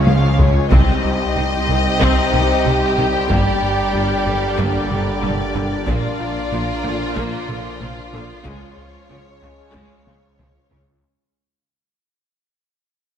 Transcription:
Already playing: double bass section C#2, detuned saw bass C#2, trombone section C#3 F3, cello section C#3, french horn section G#3 C#4, analog synth pad G#3 C#4 F4 C#5
0.06 analog synth bass C#3, viola section F3, violin section F4 F5, taiko high
0.38 analog synth bass C#2, viola section G#3, violin section G#4 C#5, taiko low
0.71 double bass section C2, analog synth bass C2, detuned saw bass C2, cello section C3, trombone section C3 G3, analog synth pad G3 D#4 G4 C5, french horn section C4 D#4, viola section C4, violin section G4 D#5, taiko
1.05 analog synth bass C2
1.36 double bass section C2, analog synth bass C2, cello section C3, viola section G3
1.68 double bass section C2, analog synth bass C2, cello section C3, viola section D#3
2.00 double bass section C2, analog synth bass C2, cello section C3, viola section C4, taiko
2.33 analog synth bass C2, double bass section C2, cello section C3, viola section D#3, taiko mid
2.65 analog synth bass C2, double bass section C2, cello section C3, viola section G3, taiko mid
2.97 analog synth bass C2, double bass section C2, cello section C3, viola section D#3, taiko mid
3.29 detuned saw bass G1, double bass section G1, cello section G2, analog synth bass G2, trombone section D3, viola section A#3, french horn section A#3 D4, analog synth pad D4 A#4, violin section D5, taiko
3.63 analog synth bass G2
3.93 double bass section G1, cello section G2, analog synth bass G2, viola section G3
4.26 double bass section G1, cello section G2, analog synth bass G2, viola section D3
4.57 double bass section G1, cello section G2, analog synth bass G2, viola section A#3, taiko
4.90 double bass section G1, cello section G2, analog synth bass G2, viola section D3, taiko mid
5.22 double bass section G1, analog synth bass G2, cello section G2, viola section G3, taiko mid
5.55 double bass section G1, cello section G2, analog synth bass G2, viola section D3, taiko mid
5.87 double bass section A#1, detuned saw bass A#1, cello section A#2, analog synth bass A#2, trombone section A#2 F3, analog synth pad A#3 F4, viola section A#3, violin section F4, taiko
6.20 analog synth bass A#2, taiko rim
6.52 double bass section A#1, analog synth bass A#2, cello section A#2, viola section F3
6.84 double bass section A#1, cello section A#2, analog synth bass A#2, viola section D3, taiko rim
7.16 double bass section A#1, cello section A#2, analog synth bass A#2, viola section A#3, taiko
7.48 double bass section A#1, cello section A#2, analog synth bass A#2, viola section D3, taiko mid
7.81 double bass section A#1, cello section A#2, analog synth bass A#2, viola section F3, taiko mid
8.13 double bass section A#1, cello section A#2, analog synth bass A#2, viola section D3, taiko mid
8.45 double bass section C#2, analog synth bass C#2, detuned saw bass C#2, cello section C#3, trombone section C#3, analog synth pad G#3 C#4 C#5, french horn section G#3 C#4, viola section G#3, violin section C#5, taiko
8.78 analog synth bass C#2
9.10 double bass section C#2, analog synth bass C#2, cello section C#3, viola section F3
9.42 analog synth bass C#2, double bass section C#2, cello section C#3, viola section C#3, taiko rim
9.74 double bass section C#2, analog synth bass C#2, cello section C#3, viola section G#3, taiko
10.07 double bass section C#2, analog synth bass C#2, cello section C#3, viola section C#3, taiko high
10.39 double bass section C#2, analog synth bass C#2, cello section C#3, viola section F3, taiko mid
10.71 analog synth bass C#2, double bass section C#2, cello section C#3, viola section C#3, taiko low

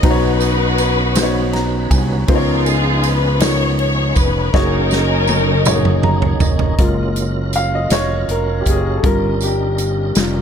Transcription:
0.02 fingered electric bass B1, upright piano B2 B3 D#4 F#4 C5 A#5, tonewheel organ F#3 B3 C#4 D#4 B4, string section D#4 F#4, kick, ride
0.06 string section B4
0.11 upright piano C#5
0.40 ride, tambourine
0.78 ride, tambourine
1.15 upright piano B3 D#4 F#4 B4 C5, snare, ride, tambourine
1.23 upright piano C#5
1.53 upright piano A#5, snare, ride
1.90 fingered electric bass C2, upright piano G#5, kick, ride, tambourine
2.27 fingered electric bass C#2, upright piano C#3 B3 D#4 F4 A#4 C5, tonewheel organ F3 B3 C#4 D#4 G#4, string section D#4 F4 A#4, kick, ride
2.35 upright piano C#5
2.66 string section G#4, ride, tambourine
3.03 string section B4, ride, tambourine
3.40 upright piano B3 D#4 F4 A#4 C#5, string section C#5, snare, ride, tambourine
3.79 string section C#5, ride
4.16 fingered electric bass F1, string section B4, kick, ride, tambourine
4.53 fingered electric bass F#1, tonewheel organ F#3 A#3 C#4 D#4 G#4, upright piano A#3 D#4 F#4 G#4 C#5, string section C#4 D#4 A#4, kick, snare
4.91 snare, tambourine
5.27 high tom, tambourine
5.65 upright piano A#3 D#4 F#4 G#4 C#5, mid tom, tambourine
5.85 mid tom
6.03 upright piano A#5, mid tom
6.22 floor tom
6.40 fingered electric bass F1, upright piano D#5, floor tom, tambourine
6.59 floor tom
6.78 fingered electric bass F#1, tonewheel organ F#3 C#4 F4 A#4, upright piano G#3 A#3 F4, kick, closed hi-hat
7.16 closed hi-hat, tambourine
7.53 upright piano F5, closed hi-hat, tambourine
7.75 upright piano D#5
7.90 fingered electric bass F1, upright piano C#5, snare, closed hi-hat, tambourine
8.28 fingered electric bass F1, upright piano A#4, closed hi-hat
8.60 upright piano G4
8.66 fingered electric bass F#1, upright piano G#4, kick, closed hi-hat, tambourine
8.97 upright piano A4
9.03 fingered electric bass G1, upright piano G3 C#4 F4 A#4, tonewheel organ G3 C#4 D#4 A4, kick, closed hi-hat
9.10 tonewheel organ A#4
9.41 upright piano G4, closed hi-hat, tambourine
9.78 closed hi-hat, tambourine
10.15 fingered electric bass F1, upright piano G3 C#4 F4, snare, closed hi-hat, tambourine

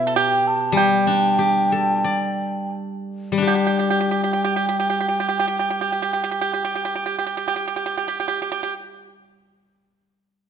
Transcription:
Already playing: guzheng B2, xiao E5
0.07 pipa A4
0.16 pipa G4, xiao G5
0.47 xiao A5
0.72 guzheng G3, xiao G5
0.77 pipa G4
1.07 guzheng D4
1.39 guzheng G4
1.72 pipa F#4, guzheng A4
1.90 pipa F4
2.04 pipa E4, guzheng D5
3.32 guzheng G3
3.38 guzheng D4
3.42 guzheng G4
3.47 pipa G4, xiao F#5
3.55 pipa G4
3.61 xiao G5
3.67 pipa G4
3.79 pipa G4
3.90 pipa G4
4.00 pipa G4
4.11 pipa G4
4.24 pipa G4
4.33 pipa G4
4.44 pipa G4
4.56 pipa G4
4.69 pipa G4
4.80 pipa G4
4.90 pipa G4
5.01 pipa G4
5.08 pipa G4
5.20 pipa G4
5.29 pipa G4
5.39 pipa G4
5.48 pipa G4
5.59 pipa G4
5.70 pipa G4
5.81 pipa G4
5.92 pipa G4
6.02 pipa G4
6.13 pipa G4
6.24 pipa G4
6.31 pipa G4
6.41 pipa G4
6.54 pipa G4
6.65 pipa G4
6.75 pipa G4
6.85 pipa G4
6.95 pipa G4
7.06 pipa G4
7.19 pipa G4
7.26 pipa G4
7.37 pipa G4
7.48 pipa G4
7.56 pipa G4
7.68 pipa G4
7.76 pipa G4
7.86 pipa G4
7.97 pipa G4
8.08 pipa G4
8.20 pipa G4
8.28 pipa G4
8.42 pipa G4
8.52 pipa G4
8.63 pipa G4

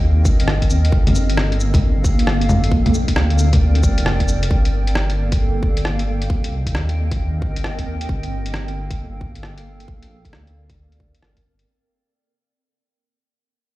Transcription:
Already playing: detuned saw bass D#2, ambient pad C4 A#4 D#5 G5
0.25 detuned saw bass G1, kick, cabasa
0.40 closed hi-hat
0.48 cross-stick
0.62 kick, closed hi-hat
0.70 detuned saw bass D#2, cabasa
0.85 closed hi-hat
0.92 detuned saw bass G1, ambient pad A#3 A4 F5, kick
1.07 closed hi-hat, low bongo
1.15 cabasa
1.30 closed hi-hat
1.37 cross-stick
1.52 closed hi-hat
1.60 cabasa
1.74 kick, closed hi-hat, low bongo
2.04 detuned saw bass G1, kick, cabasa
2.19 closed hi-hat
2.27 cross-stick
2.41 closed hi-hat
2.49 low bongo, cabasa
2.64 closed hi-hat
2.71 detuned saw bass A#1, ambient pad C4 A#4 D5 G5, kick
2.86 closed hi-hat, low bongo
2.94 cabasa
3.08 kick, closed hi-hat
3.16 detuned saw bass D2, cross-stick
3.30 closed hi-hat
3.38 cabasa
3.53 kick, closed hi-hat, low bongo
3.75 closed hi-hat
3.83 detuned saw bass F1, kick, cabasa
3.98 closed hi-hat
4.06 cross-stick
4.20 kick, closed hi-hat
4.28 cabasa
4.43 closed hi-hat
4.51 detuned saw bass G1, ambient pad A#3 A4 F5 G5, kick
4.65 closed hi-hat
4.87 closed hi-hat
4.95 cross-stick
5.10 closed hi-hat
5.32 kick, closed hi-hat
5.63 detuned saw bass G1, kick
5.77 closed hi-hat
5.85 cross-stick
5.99 closed hi-hat
6.22 closed hi-hat
6.30 detuned saw bass C2, ambient pad C4 A#4 D#5, kick
6.44 closed hi-hat
6.67 kick, closed hi-hat
6.75 detuned saw bass D#2, cross-stick
6.89 closed hi-hat
7.12 kick, closed hi-hat
7.42 detuned saw bass G1, kick
7.56 closed hi-hat
7.64 cross-stick
7.79 kick, closed hi-hat
7.87 detuned saw bass D#2
8.01 closed hi-hat
8.09 detuned saw bass G1, ambient pad A#3 A4 F5, kick
8.23 closed hi-hat
8.46 closed hi-hat
8.54 cross-stick
8.68 closed hi-hat
8.91 kick, closed hi-hat
9.21 detuned saw bass G1, kick
9.35 closed hi-hat
9.43 cross-stick
9.58 closed hi-hat
9.80 closed hi-hat
9.88 detuned saw bass A#1, ambient pad C4 A#4 D5, kick
10.03 closed hi-hat
10.25 kick, closed hi-hat
10.33 detuned saw bass D2, cross-stick
10.47 closed hi-hat
10.70 kick, closed hi-hat
10.92 closed hi-hat
11.00 kick
11.15 closed hi-hat
11.22 detuned saw bass G1, cross-stick
11.37 kick, closed hi-hat
11.59 closed hi-hat

